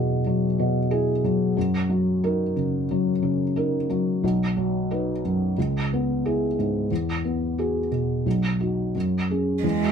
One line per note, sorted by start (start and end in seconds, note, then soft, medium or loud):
0.00 0.20 E2 soft
0.00 0.44 B2 soft
0.00 0.26 F#3 soft
0.00 0.91 E4 soft
0.00 0.91 G#4 soft
0.26 0.78 F#3 soft
0.59 1.11 B2 soft
0.91 1.20 E4 soft
0.91 1.20 G#4 soft
1.24 1.57 F#3 soft
1.57 2.85 F#2 soft
1.89 2.42 F#3 soft
2.24 2.53 D#4 soft
2.24 2.53 A#4 soft
2.56 3.09 C#3 soft
2.91 3.43 F#3 soft
3.23 3.76 C#3 soft
3.56 3.86 D#4 soft
3.56 3.86 A#4 soft
3.90 4.23 F#3 soft
4.24 5.53 B1 soft
4.57 5.10 F#3 soft
4.91 5.21 D#4 soft
4.91 5.21 B4 soft
5.25 5.57 F#2 soft
5.58 6.87 C#2 soft
5.93 6.45 B3 soft
6.25 6.55 E4 soft
6.25 6.55 G#4 soft
6.59 6.91 G#2 soft
6.91 8.21 E2 soft
7.25 7.78 B3 soft
7.58 7.88 F#4 soft
7.58 7.88 G#4 soft
7.91 8.25 B2 soft
8.26 8.93 B1 soft
8.60 8.91 D#4 soft
8.60 8.92 F#4 soft
8.95 9.62 F#2 soft
9.30 9.61 C#4 soft
9.30 9.61 G#4 soft
9.63 9.92 E2 soft
9.63 9.92 G#3 soft